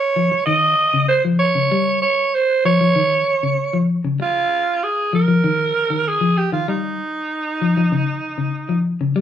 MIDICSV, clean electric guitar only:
0, 0, Header, 1, 3, 480
1, 0, Start_track
1, 0, Tempo, 620476
1, 1326, Time_signature, 4, 2, 24, 8
1, 7126, End_track
2, 0, Start_track
2, 0, Title_t, "Clean electric guitar"
2, 0, Program_c, 0, 27
2, 126, Note_on_c, 0, 53, 72
2, 230, Note_off_c, 0, 53, 0
2, 362, Note_on_c, 0, 51, 78
2, 571, Note_off_c, 0, 51, 0
2, 725, Note_on_c, 0, 49, 64
2, 932, Note_off_c, 0, 49, 0
2, 964, Note_on_c, 0, 53, 62
2, 1172, Note_off_c, 0, 53, 0
2, 1200, Note_on_c, 0, 49, 57
2, 1306, Note_off_c, 0, 49, 0
2, 1326, Note_on_c, 0, 55, 84
2, 1533, Note_off_c, 0, 55, 0
2, 2051, Note_on_c, 0, 53, 67
2, 2152, Note_off_c, 0, 53, 0
2, 2173, Note_on_c, 0, 53, 70
2, 2273, Note_off_c, 0, 53, 0
2, 2288, Note_on_c, 0, 51, 86
2, 2493, Note_off_c, 0, 51, 0
2, 2654, Note_on_c, 0, 49, 63
2, 2857, Note_off_c, 0, 49, 0
2, 2888, Note_on_c, 0, 53, 66
2, 3093, Note_off_c, 0, 53, 0
2, 3129, Note_on_c, 0, 49, 66
2, 3230, Note_off_c, 0, 49, 0
2, 3969, Note_on_c, 0, 53, 72
2, 4070, Note_off_c, 0, 53, 0
2, 4084, Note_on_c, 0, 53, 70
2, 4187, Note_off_c, 0, 53, 0
2, 4208, Note_on_c, 0, 51, 83
2, 4413, Note_off_c, 0, 51, 0
2, 4566, Note_on_c, 0, 51, 65
2, 4772, Note_off_c, 0, 51, 0
2, 4804, Note_on_c, 0, 53, 60
2, 5010, Note_off_c, 0, 53, 0
2, 5047, Note_on_c, 0, 51, 68
2, 5149, Note_off_c, 0, 51, 0
2, 5169, Note_on_c, 0, 55, 69
2, 5374, Note_off_c, 0, 55, 0
2, 5891, Note_on_c, 0, 53, 68
2, 5991, Note_off_c, 0, 53, 0
2, 6012, Note_on_c, 0, 53, 67
2, 6112, Note_off_c, 0, 53, 0
2, 6127, Note_on_c, 0, 49, 75
2, 6333, Note_off_c, 0, 49, 0
2, 6481, Note_on_c, 0, 49, 62
2, 6690, Note_off_c, 0, 49, 0
2, 6722, Note_on_c, 0, 53, 63
2, 6930, Note_off_c, 0, 53, 0
2, 6968, Note_on_c, 0, 49, 65
2, 7070, Note_off_c, 0, 49, 0
2, 7085, Note_on_c, 0, 55, 84
2, 7126, Note_off_c, 0, 55, 0
2, 7126, End_track
3, 0, Start_track
3, 0, Title_t, "Muted clean electric guitar strokes"
3, 244, Note_on_c, 9, 29, 68
3, 321, Note_off_c, 9, 29, 0
3, 3247, Note_on_c, 9, 29, 79
3, 3324, Note_off_c, 9, 29, 0
3, 7126, End_track
0, 0, End_of_file